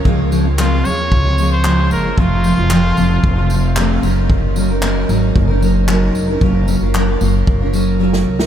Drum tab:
TB |--x---x---x---x-|--x---x---x---x-|--x---x---x---x-|--x---x---x-----|
CP |----x-------x---|----x-------x---|----x-------x---|----x-----------|
SD |----------------|----------------|----------------|-------------o-o|
BD |o-------o-------|o-------o-------|o-------o-------|o-------o-------|